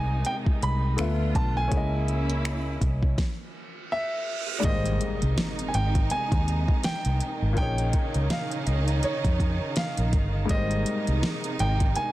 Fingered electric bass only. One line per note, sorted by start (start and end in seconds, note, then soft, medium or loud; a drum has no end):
0.00 0.22 C2 medium
0.62 0.95 C2 medium
0.99 1.32 D2 loud
1.35 1.68 B1 loud
1.72 2.77 C#2 loud
2.82 3.15 C2 medium
4.64 4.98 G#1 loud
5.22 5.36 C2 loud
5.74 6.07 G#1 medium
6.11 muted fingered electric bass stroke soft
6.32 6.65 D#2 medium
6.84 muted fingered electric bass stroke soft
7.06 7.19 C2 medium
7.42 7.56 G#1 medium
8.15 8.29 C#2 loud
8.67 9.00 C#2 medium
9.25 9.58 F2 medium
9.98 10.12 A#1 loud
10.13 10.46 G1 medium
10.50 10.83 G#1 loud
11.08 11.22 C2 medium
11.60 11.93 G#1 loud
11.97 muted fingered electric bass stroke medium